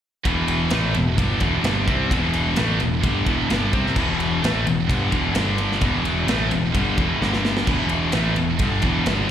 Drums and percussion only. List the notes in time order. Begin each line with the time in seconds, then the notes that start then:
0.25 kick, ride
0.48 ride
0.70 snare, ride
0.94 ride
1.18 kick, ride
1.40 kick, ride
1.64 snare, ride
1.88 kick, ride
2.11 kick, ride
2.34 ride
2.56 snare, ride
2.80 ride
3.04 kick, ride
3.27 kick, ride
3.50 snare, ride
3.73 kick, ride
3.87 snare
3.96 kick, crash
4.20 ride
4.44 snare, ride
4.67 ride
4.90 kick, ride
5.12 kick, ride
5.35 snare, ride
5.58 ride
5.72 snare
5.81 kick, ride
6.05 ride
6.28 snare, ride
6.51 ride
6.75 kick, ride
6.98 kick, ride
7.22 snare
7.33 snare
7.45 snare
7.57 snare
7.67 kick, crash
7.89 ride
8.12 snare, ride
8.36 ride
8.59 kick, ride
8.82 kick, ride
9.06 snare, ride